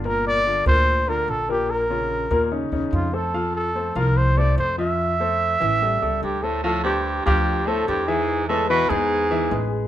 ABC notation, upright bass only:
X:1
M:4/4
L:1/8
Q:1/4=146
K:Dm
V:1 name="Upright bass" clef=bass
G,,,3 D,,3 B,,,2- | B,,,3 _E,,2 E,, F,,2- | F,,3 C,,3 F,,2- | F,,3 A,,,2 ^C,, D,,2- |
D,,3 D,,3 E,,2- | E,,3 E,,3 A,,,2 |]